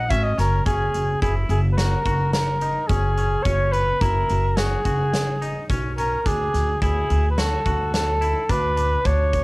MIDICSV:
0, 0, Header, 1, 5, 480
1, 0, Start_track
1, 0, Tempo, 559180
1, 568, Time_signature, 5, 2, 24, 8
1, 8102, End_track
2, 0, Start_track
2, 0, Title_t, "Soprano saxophone"
2, 0, Program_c, 0, 64
2, 0, Note_on_c, 0, 78, 86
2, 84, Note_on_c, 0, 76, 88
2, 97, Note_off_c, 0, 78, 0
2, 200, Note_on_c, 0, 75, 73
2, 213, Note_off_c, 0, 76, 0
2, 324, Note_off_c, 0, 75, 0
2, 336, Note_on_c, 0, 70, 83
2, 556, Note_off_c, 0, 70, 0
2, 567, Note_on_c, 0, 68, 79
2, 1014, Note_off_c, 0, 68, 0
2, 1046, Note_on_c, 0, 68, 72
2, 1154, Note_off_c, 0, 68, 0
2, 1287, Note_on_c, 0, 68, 70
2, 1368, Note_off_c, 0, 68, 0
2, 1478, Note_on_c, 0, 71, 57
2, 1523, Note_on_c, 0, 70, 79
2, 1536, Note_off_c, 0, 71, 0
2, 1990, Note_off_c, 0, 70, 0
2, 1995, Note_on_c, 0, 70, 83
2, 2465, Note_on_c, 0, 68, 85
2, 2477, Note_off_c, 0, 70, 0
2, 2945, Note_on_c, 0, 73, 105
2, 2958, Note_off_c, 0, 68, 0
2, 3192, Note_on_c, 0, 71, 90
2, 3205, Note_off_c, 0, 73, 0
2, 3438, Note_on_c, 0, 70, 80
2, 3451, Note_off_c, 0, 71, 0
2, 3919, Note_on_c, 0, 68, 76
2, 3932, Note_off_c, 0, 70, 0
2, 4884, Note_off_c, 0, 68, 0
2, 5134, Note_on_c, 0, 70, 73
2, 5382, Note_on_c, 0, 68, 80
2, 5395, Note_off_c, 0, 70, 0
2, 5847, Note_off_c, 0, 68, 0
2, 5852, Note_on_c, 0, 68, 73
2, 6242, Note_off_c, 0, 68, 0
2, 6267, Note_on_c, 0, 71, 53
2, 6338, Note_on_c, 0, 69, 74
2, 6350, Note_off_c, 0, 71, 0
2, 6810, Note_off_c, 0, 69, 0
2, 6815, Note_on_c, 0, 69, 76
2, 7297, Note_on_c, 0, 71, 86
2, 7309, Note_off_c, 0, 69, 0
2, 7776, Note_on_c, 0, 73, 94
2, 7789, Note_off_c, 0, 71, 0
2, 8102, Note_off_c, 0, 73, 0
2, 8102, End_track
3, 0, Start_track
3, 0, Title_t, "Clean electric guitar"
3, 0, Program_c, 1, 27
3, 89, Note_on_c, 1, 61, 76
3, 274, Note_off_c, 1, 61, 0
3, 325, Note_on_c, 1, 61, 78
3, 512, Note_off_c, 1, 61, 0
3, 565, Note_on_c, 1, 61, 75
3, 937, Note_off_c, 1, 61, 0
3, 1048, Note_on_c, 1, 64, 67
3, 1419, Note_off_c, 1, 64, 0
3, 1524, Note_on_c, 1, 66, 69
3, 1711, Note_off_c, 1, 66, 0
3, 1768, Note_on_c, 1, 66, 66
3, 2139, Note_off_c, 1, 66, 0
3, 2249, Note_on_c, 1, 63, 70
3, 2434, Note_off_c, 1, 63, 0
3, 2485, Note_on_c, 1, 61, 71
3, 2672, Note_off_c, 1, 61, 0
3, 2730, Note_on_c, 1, 61, 68
3, 2915, Note_off_c, 1, 61, 0
3, 2970, Note_on_c, 1, 61, 84
3, 3341, Note_off_c, 1, 61, 0
3, 3453, Note_on_c, 1, 64, 65
3, 3823, Note_off_c, 1, 64, 0
3, 3931, Note_on_c, 1, 66, 74
3, 4116, Note_off_c, 1, 66, 0
3, 4170, Note_on_c, 1, 66, 63
3, 4541, Note_off_c, 1, 66, 0
3, 4650, Note_on_c, 1, 63, 69
3, 4835, Note_off_c, 1, 63, 0
3, 4893, Note_on_c, 1, 61, 71
3, 5077, Note_off_c, 1, 61, 0
3, 5132, Note_on_c, 1, 61, 64
3, 5317, Note_off_c, 1, 61, 0
3, 5373, Note_on_c, 1, 62, 79
3, 5743, Note_off_c, 1, 62, 0
3, 5856, Note_on_c, 1, 64, 72
3, 6225, Note_off_c, 1, 64, 0
3, 6335, Note_on_c, 1, 66, 74
3, 6519, Note_off_c, 1, 66, 0
3, 6572, Note_on_c, 1, 66, 64
3, 6943, Note_off_c, 1, 66, 0
3, 7049, Note_on_c, 1, 64, 67
3, 7235, Note_off_c, 1, 64, 0
3, 7290, Note_on_c, 1, 62, 71
3, 7476, Note_off_c, 1, 62, 0
3, 7524, Note_on_c, 1, 62, 65
3, 7712, Note_off_c, 1, 62, 0
3, 7767, Note_on_c, 1, 62, 80
3, 8102, Note_off_c, 1, 62, 0
3, 8102, End_track
4, 0, Start_track
4, 0, Title_t, "Upright bass"
4, 0, Program_c, 2, 32
4, 89, Note_on_c, 2, 32, 82
4, 305, Note_off_c, 2, 32, 0
4, 328, Note_on_c, 2, 30, 84
4, 544, Note_off_c, 2, 30, 0
4, 570, Note_on_c, 2, 30, 73
4, 759, Note_off_c, 2, 30, 0
4, 816, Note_on_c, 2, 30, 71
4, 1002, Note_off_c, 2, 30, 0
4, 1051, Note_on_c, 2, 30, 75
4, 1239, Note_off_c, 2, 30, 0
4, 1281, Note_on_c, 2, 30, 89
4, 1662, Note_off_c, 2, 30, 0
4, 1764, Note_on_c, 2, 30, 81
4, 2334, Note_off_c, 2, 30, 0
4, 2486, Note_on_c, 2, 30, 83
4, 2866, Note_off_c, 2, 30, 0
4, 2967, Note_on_c, 2, 30, 83
4, 3346, Note_off_c, 2, 30, 0
4, 3444, Note_on_c, 2, 30, 86
4, 3635, Note_off_c, 2, 30, 0
4, 3694, Note_on_c, 2, 30, 84
4, 4071, Note_off_c, 2, 30, 0
4, 4165, Note_on_c, 2, 30, 66
4, 4736, Note_off_c, 2, 30, 0
4, 4893, Note_on_c, 2, 35, 73
4, 5271, Note_off_c, 2, 35, 0
4, 5371, Note_on_c, 2, 38, 78
4, 5560, Note_off_c, 2, 38, 0
4, 5613, Note_on_c, 2, 38, 75
4, 5801, Note_off_c, 2, 38, 0
4, 5854, Note_on_c, 2, 38, 80
4, 6042, Note_off_c, 2, 38, 0
4, 6097, Note_on_c, 2, 38, 90
4, 6473, Note_off_c, 2, 38, 0
4, 6574, Note_on_c, 2, 38, 82
4, 7141, Note_off_c, 2, 38, 0
4, 7295, Note_on_c, 2, 38, 88
4, 7672, Note_off_c, 2, 38, 0
4, 7771, Note_on_c, 2, 38, 77
4, 8102, Note_off_c, 2, 38, 0
4, 8102, End_track
5, 0, Start_track
5, 0, Title_t, "Drums"
5, 89, Note_on_c, 9, 42, 85
5, 91, Note_on_c, 9, 36, 101
5, 175, Note_off_c, 9, 42, 0
5, 177, Note_off_c, 9, 36, 0
5, 333, Note_on_c, 9, 38, 35
5, 333, Note_on_c, 9, 42, 61
5, 419, Note_off_c, 9, 38, 0
5, 419, Note_off_c, 9, 42, 0
5, 567, Note_on_c, 9, 42, 74
5, 569, Note_on_c, 9, 36, 88
5, 653, Note_off_c, 9, 42, 0
5, 655, Note_off_c, 9, 36, 0
5, 808, Note_on_c, 9, 42, 55
5, 894, Note_off_c, 9, 42, 0
5, 1048, Note_on_c, 9, 36, 93
5, 1049, Note_on_c, 9, 42, 71
5, 1134, Note_off_c, 9, 36, 0
5, 1134, Note_off_c, 9, 42, 0
5, 1286, Note_on_c, 9, 42, 49
5, 1371, Note_off_c, 9, 42, 0
5, 1527, Note_on_c, 9, 38, 89
5, 1527, Note_on_c, 9, 42, 73
5, 1613, Note_off_c, 9, 38, 0
5, 1613, Note_off_c, 9, 42, 0
5, 1762, Note_on_c, 9, 42, 55
5, 1765, Note_on_c, 9, 36, 73
5, 1848, Note_off_c, 9, 42, 0
5, 1851, Note_off_c, 9, 36, 0
5, 2003, Note_on_c, 9, 38, 95
5, 2003, Note_on_c, 9, 42, 71
5, 2089, Note_off_c, 9, 38, 0
5, 2089, Note_off_c, 9, 42, 0
5, 2242, Note_on_c, 9, 42, 50
5, 2328, Note_off_c, 9, 42, 0
5, 2483, Note_on_c, 9, 42, 70
5, 2485, Note_on_c, 9, 36, 91
5, 2569, Note_off_c, 9, 42, 0
5, 2571, Note_off_c, 9, 36, 0
5, 2725, Note_on_c, 9, 42, 52
5, 2811, Note_off_c, 9, 42, 0
5, 2965, Note_on_c, 9, 36, 94
5, 2966, Note_on_c, 9, 42, 67
5, 3051, Note_off_c, 9, 36, 0
5, 3052, Note_off_c, 9, 42, 0
5, 3205, Note_on_c, 9, 42, 51
5, 3291, Note_off_c, 9, 42, 0
5, 3444, Note_on_c, 9, 42, 75
5, 3445, Note_on_c, 9, 36, 91
5, 3530, Note_off_c, 9, 42, 0
5, 3531, Note_off_c, 9, 36, 0
5, 3686, Note_on_c, 9, 42, 54
5, 3772, Note_off_c, 9, 42, 0
5, 3924, Note_on_c, 9, 38, 103
5, 3924, Note_on_c, 9, 42, 74
5, 4010, Note_off_c, 9, 38, 0
5, 4010, Note_off_c, 9, 42, 0
5, 4164, Note_on_c, 9, 42, 59
5, 4166, Note_on_c, 9, 36, 65
5, 4250, Note_off_c, 9, 42, 0
5, 4252, Note_off_c, 9, 36, 0
5, 4409, Note_on_c, 9, 38, 90
5, 4409, Note_on_c, 9, 42, 75
5, 4494, Note_off_c, 9, 38, 0
5, 4494, Note_off_c, 9, 42, 0
5, 4653, Note_on_c, 9, 42, 54
5, 4739, Note_off_c, 9, 42, 0
5, 4891, Note_on_c, 9, 36, 92
5, 4892, Note_on_c, 9, 42, 77
5, 4976, Note_off_c, 9, 36, 0
5, 4978, Note_off_c, 9, 42, 0
5, 5134, Note_on_c, 9, 42, 59
5, 5220, Note_off_c, 9, 42, 0
5, 5373, Note_on_c, 9, 36, 89
5, 5373, Note_on_c, 9, 42, 72
5, 5459, Note_off_c, 9, 36, 0
5, 5459, Note_off_c, 9, 42, 0
5, 5616, Note_on_c, 9, 38, 29
5, 5616, Note_on_c, 9, 42, 51
5, 5702, Note_off_c, 9, 38, 0
5, 5702, Note_off_c, 9, 42, 0
5, 5853, Note_on_c, 9, 36, 94
5, 5853, Note_on_c, 9, 42, 68
5, 5939, Note_off_c, 9, 36, 0
5, 5939, Note_off_c, 9, 42, 0
5, 6095, Note_on_c, 9, 42, 48
5, 6180, Note_off_c, 9, 42, 0
5, 6333, Note_on_c, 9, 38, 99
5, 6333, Note_on_c, 9, 42, 71
5, 6419, Note_off_c, 9, 38, 0
5, 6419, Note_off_c, 9, 42, 0
5, 6572, Note_on_c, 9, 36, 69
5, 6572, Note_on_c, 9, 42, 49
5, 6658, Note_off_c, 9, 36, 0
5, 6658, Note_off_c, 9, 42, 0
5, 6814, Note_on_c, 9, 38, 94
5, 6814, Note_on_c, 9, 42, 70
5, 6900, Note_off_c, 9, 38, 0
5, 6900, Note_off_c, 9, 42, 0
5, 7053, Note_on_c, 9, 42, 50
5, 7139, Note_off_c, 9, 42, 0
5, 7290, Note_on_c, 9, 42, 73
5, 7292, Note_on_c, 9, 36, 93
5, 7376, Note_off_c, 9, 42, 0
5, 7377, Note_off_c, 9, 36, 0
5, 7530, Note_on_c, 9, 42, 52
5, 7615, Note_off_c, 9, 42, 0
5, 7768, Note_on_c, 9, 42, 68
5, 7770, Note_on_c, 9, 36, 89
5, 7854, Note_off_c, 9, 42, 0
5, 7856, Note_off_c, 9, 36, 0
5, 8010, Note_on_c, 9, 36, 65
5, 8010, Note_on_c, 9, 42, 56
5, 8096, Note_off_c, 9, 36, 0
5, 8096, Note_off_c, 9, 42, 0
5, 8102, End_track
0, 0, End_of_file